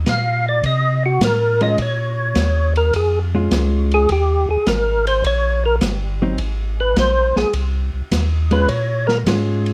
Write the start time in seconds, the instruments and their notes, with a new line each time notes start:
0.06 tonewheel organ A#2 F5, kick, snare, hi-hat pedal, ride
0.49 tonewheel organ D5
0.63 tonewheel organ C3 D#5, kick, ride
1.06 tonewheel organ F#4
1.21 tonewheel organ A2 A#4, kick, snare, hi-hat pedal, ride
1.61 hollow-body jazz guitar G#3 C#4 F4, tonewheel organ D#5, ride
1.78 tonewheel organ A#2 C#5, kick, ride
2.35 tonewheel organ D#2, kick, snare, hi-hat pedal, ride
2.76 tonewheel organ A#4, ride
2.93 tonewheel organ F2 G#4, kick, ride
3.35 hollow-body jazz guitar G#3 C#4 F4
3.51 tonewheel organ C#2, kick, snare, hi-hat pedal, ride
3.91 tonewheel organ G#4, ride
4.09 tonewheel organ D#2 G4, kick, ride
4.48 tonewheel organ D#2 G#4
4.66 tonewheel organ G#1 A#4, kick, snare, hi-hat pedal, ride
5.07 tonewheel organ C5, ride
5.24 tonewheel organ A#1 C#5, kick, ride
5.66 tonewheel organ A#4
5.81 tonewheel organ G1, kick, snare, hi-hat pedal, ride
6.22 hollow-body jazz guitar F#3 C4 D#4
6.38 tonewheel organ G#1, kick, ride
6.80 tonewheel organ B4
6.96 tonewheel organ A#1 C5, kick, snare, hi-hat pedal, ride
7.36 tonewheel organ A#1 G#4, snare
7.53 tonewheel organ C2, kick, ride
7.93 tonewheel organ C2
8.11 tonewheel organ D#2, kick, snare, hi-hat pedal, ride
8.51 hollow-body jazz guitar G#3 C#4 F4, tonewheel organ B4, ride
8.68 tonewheel organ A#2 C#5, kick, ride
9.07 tonewheel organ A#4, snare
9.26 tonewheel organ G#2, hollow-body jazz guitar G#3 C#4 F4, kick, snare, hi-hat pedal, ride
9.66 ride